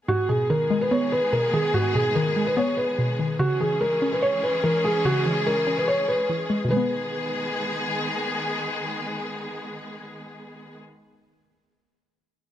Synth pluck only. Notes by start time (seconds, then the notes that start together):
0.08 G#2
0.29 B2
0.50 D#3
0.70 G#3
0.91 B3
1.33 B2
1.53 D#3
1.74 G#2
1.95 B2
2.16 D#3
2.36 G#3
2.57 B3
2.98 B2
3.19 D#3
3.40 C#3
3.60 E3
3.81 G#3
4.02 C#4
4.22 C#5
4.64 E3
4.84 G#3
5.05 C#3
5.26 E3
5.46 G#3
5.67 C#4
5.88 C#5
6.29 E3
6.50 G#3
6.64 B2
6.69 D#3
6.73 G#3
6.77 B3